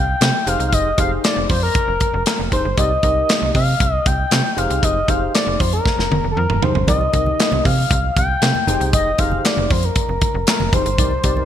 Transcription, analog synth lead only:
0.00 0.49 G5 loud
0.48 0.67 F5 loud
0.68 0.75 F5 medium
0.73 0.99 D#5 loud
1.00 1.11 F5 loud
1.24 1.48 D5 medium
1.50 1.62 C5 medium
1.63 2.23 A#4 loud
2.27 2.38 A#4 loud
2.53 2.76 C5 medium
2.79 3.51 D#5 loud
3.55 3.93 F5 loud
3.93 4.08 D#5 loud
4.07 4.59 G5 loud
4.58 4.85 F5 loud
4.84 5.11 D#5 loud
5.09 5.34 F5 loud
5.34 5.61 D5 medium
5.60 5.73 C5 medium
5.73 6.27 A#4 loud
6.31 6.39 A4 medium
6.37 6.64 A#4 loud
6.63 6.87 C5 medium
6.88 7.67 D#5 loud
7.65 8.16 F5 loud
8.17 8.89 G5 loud
8.94 9.21 D#5 loud
9.19 9.46 F5 loud
9.45 9.72 D5 medium
9.71 9.86 C5 medium
9.84 10.47 A#4 medium
10.48 10.75 A#4 medium
10.74 11.45 C5 loud

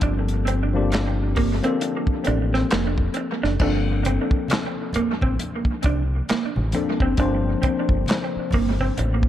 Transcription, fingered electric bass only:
0.03 1.60 G1 medium
2.08 muted fingered electric bass stroke soft
2.28 2.63 A1 medium
2.73 3.07 F1 medium
3.44 3.58 F#1 medium
3.61 4.17 G1 medium
4.32 muted fingered electric bass stroke soft
4.96 muted fingered electric bass stroke soft
5.23 5.37 A1 medium
5.85 6.20 C2 medium
6.31 muted fingered electric bass stroke soft
6.57 6.71 A1 medium
7.01 7.15 F#1 medium
7.19 7.54 G1 medium
7.90 8.04 G1 medium
8.36 muted fingered electric bass stroke soft
8.54 8.89 G1 medium
8.99 9.29 A1 medium

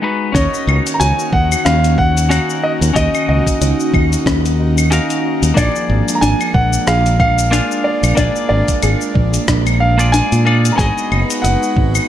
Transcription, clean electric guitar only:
0.02 0.31 G#3 medium
0.02 0.32 B3 medium
0.02 0.32 D#4 medium
0.02 0.32 F#4 medium
0.02 0.32 B4 medium
0.32 2.26 C#4 medium
0.32 2.27 D#4 medium
0.32 2.27 F#4 medium
0.32 2.28 A#4 medium
0.37 2.28 D#5 loud
2.29 2.92 C#4 medium
2.29 2.92 D#4 medium
2.29 2.92 F#4 medium
2.29 2.93 A#4 medium
2.29 2.93 F#5 medium
2.93 4.87 C#4 medium
2.93 4.87 D#4 medium
2.93 4.88 F#4 medium
2.93 4.88 A#4 medium
2.98 4.89 D#5 loud
4.91 5.53 C#4 medium
4.91 5.53 D#4 medium
4.91 5.53 F#4 medium
4.91 5.54 A#4 medium
4.91 5.54 F5 medium
5.54 7.49 F3 medium
5.54 7.48 A#3 medium
5.54 7.48 D4 medium
5.54 7.49 G#4 medium
5.58 7.50 D5 loud
7.51 8.13 A#3 medium
7.51 8.14 D4 medium
7.51 8.14 F4 medium
7.51 8.14 G#4 medium
7.51 8.15 F5 medium
8.15 9.94 A#3 medium
8.15 9.95 D4 medium
8.15 9.95 F4 medium
8.15 9.96 G#4 medium
8.19 9.96 D5 loud
9.98 10.42 A#3 medium
9.98 10.42 D4 medium
9.98 10.42 F4 medium
9.98 10.43 G#4 medium
9.98 10.43 D5 medium
10.45 10.74 A#3 medium
10.45 10.75 D4 medium
10.45 10.75 F4 medium
10.45 10.75 G#4 medium
10.45 10.76 D5 medium
10.76 12.08 B3 medium
10.76 12.08 D#4 medium
10.76 12.08 F#4 medium
10.76 12.08 G#4 medium
10.81 12.08 D#5 loud

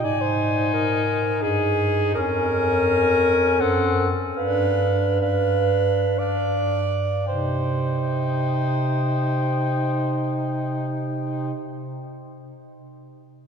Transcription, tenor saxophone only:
0.02 1.40 D#4 soft
1.42 2.17 D#4 soft
2.16 3.62 C#4 medium
3.61 4.10 C4 medium
4.37 5.18 D4 medium
5.22 6.17 D4 soft
6.18 6.79 D4 soft
7.28 11.53 D#4 soft

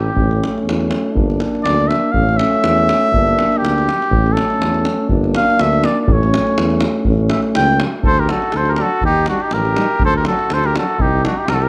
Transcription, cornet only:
0.00 0.62 G4 medium
1.63 1.90 D5 loud
1.88 2.13 E5 medium
2.12 2.38 F5 loud
2.37 3.59 E5 loud
3.58 4.34 G4 loud
4.33 5.09 A4 medium
5.37 5.63 F5 loud
5.61 5.87 E5 loud
5.86 6.01 D5 medium
6.01 6.14 D5 medium
6.13 6.85 C#5 medium
7.30 7.41 E5 medium
7.56 7.79 G5 loud
8.07 8.21 C5 loud
8.20 8.32 A#4 medium
8.31 8.58 A4 medium
8.57 8.70 C5 loud
8.69 8.73 A#4 medium
8.69 8.76 C5 medium
8.74 8.83 A#4 medium
8.81 9.05 A4 medium
9.06 9.28 G4 loud
9.29 9.43 F#4 medium
9.42 9.55 G4 medium
9.53 10.02 A#4 loud
10.05 10.16 C5 loud
10.17 10.27 A#4 medium
10.27 10.55 A4 medium
10.54 10.67 C5 medium
10.66 10.76 A#4 medium
10.78 11.03 A4 medium
11.02 11.25 G4 loud
11.26 11.39 F#4 medium
11.38 11.51 G4 medium
11.49 11.56 A#4 loud
11.54 11.65 A4 medium
11.64 11.69 A#4 medium

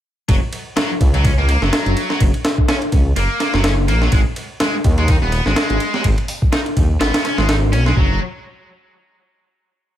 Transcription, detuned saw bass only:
0.29 0.40 F#1 loud
1.00 1.34 C#2 loud
1.38 1.57 C#2 loud
1.62 1.70 F#1 medium
1.86 1.95 F#1 medium
2.20 2.31 F#1 loud
2.92 3.12 C#2 loud
3.16 3.27 F#1 loud
3.54 3.90 F#1 loud
3.88 4.08 A#1 medium
4.12 4.23 G#1 loud
4.84 5.18 D#2 loud
5.22 5.41 D#1 loud
5.46 5.55 G#1 medium
5.70 5.79 G#1 medium
6.05 6.16 G#1 loud
6.77 6.97 D#2 loud
7.00 7.11 G#1 loud
7.38 7.74 G#1 loud
7.73 7.93 B1 medium
7.97 8.19 F#1 loud

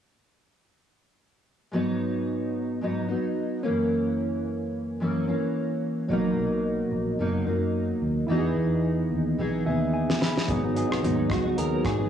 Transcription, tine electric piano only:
6.08 8.24 F#3 medium
6.08 8.25 B3 medium
6.08 8.26 D#4 medium
6.13 8.27 A#4 medium
8.27 10.44 B3 medium
8.27 10.45 D#4 medium
8.27 10.43 E4 medium
8.31 8.38 F#4 medium
8.38 10.49 G#4 medium
9.66 9.91 E5 medium
9.93 10.19 G#5 medium
10.21 10.47 B5 medium
10.47 10.68 F#3 medium
10.47 10.69 B3 medium
10.47 10.69 D#4 medium
10.47 10.70 G#4 medium
10.75 11.35 F#3 medium
10.75 11.36 B3 medium
10.75 11.36 D#4 medium
10.75 11.37 G#4 medium
11.56 12.09 F#3 medium
11.56 12.09 B3 medium
11.56 12.09 D#4 medium
11.56 12.09 G#4 medium

